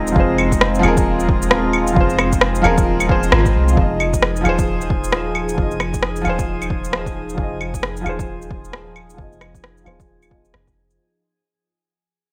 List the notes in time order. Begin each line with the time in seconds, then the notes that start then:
Already playing: D#1 F3 G#3 C4 D#4 F4 G#4 A#4 C5 D#5
0.07 shaker
0.12 F3 F4, kick
0.16 F1 F4 G#4 C5
0.38 claves
0.52 kick, shaker
0.61 cross-stick
0.75 shaker
0.79 F3 F4
0.83 D#1 G#4, claves
0.88 A#4
0.97 kick, shaker
1.20 shaker
1.29 kick
1.42 shaker
1.51 cross-stick
1.73 claves
1.87 shaker
1.92 F1 F3 F4
1.96 G#4, kick
2.00 C5
2.10 shaker
2.19 cross-stick, claves
2.32 kick, shaker
2.41 cross-stick
2.55 shaker
2.62 D#1 F3 F4 G#4, claves
2.66 A#4
2.78 kick, shaker
3.00 claves, shaker
3.07 F3 F4 G#4, kick
3.11 C5
3.23 shaker
3.32 G#1, cross-stick
3.46 kick, shaker
3.55 C2
3.68 shaker
3.73 F3 F4
3.77 F1 F3 D#4 G#4 G#5, kick
3.81 D#5
4.00 claves
4.13 kick, shaker
4.22 cross-stick
4.36 shaker
4.41 F3 F4
4.45 D#1 G#4 C5, claves
4.59 kick, shaker
4.81 shaker
4.90 kick
5.04 shaker
5.12 cross-stick
5.35 claves
5.49 shaker
5.54 F1 F3 F4, kick
5.59 G#4 D#5
5.71 shaker
5.80 cross-stick, claves
5.94 kick, shaker
6.03 cross-stick
6.16 shaker
6.21 F3 F4, claves
6.26 D#1 G#4 C5
6.39 kick, shaker
6.62 claves, shaker
6.70 kick
6.84 shaker
6.93 cross-stick
7.06 kick, shaker
7.29 shaker
7.34 F1 F3 F4, kick
7.40 G#4 D#5
7.61 claves
7.74 kick, shaker
7.83 cross-stick
7.97 shaker
8.01 F3 F4
8.06 D#1 G#4 C5, claves
8.19 kick, shaker
8.42 shaker
8.51 kick
8.65 shaker
8.73 cross-stick
8.96 claves
9.10 shaker
9.14 F3 F4
9.18 F1 G#4 D#5, kick
9.32 shaker
9.41 cross-stick, claves
9.55 kick, shaker
9.64 cross-stick
9.77 shaker
9.84 D#1 F3 F4 G#4, claves
9.88 C5
10.00 kick, shaker
10.23 claves, shaker
10.29 F3 F4 G#4, kick
10.33 D#5
10.45 shaker
10.54 F1, cross-stick
10.67 kick, shaker
10.90 shaker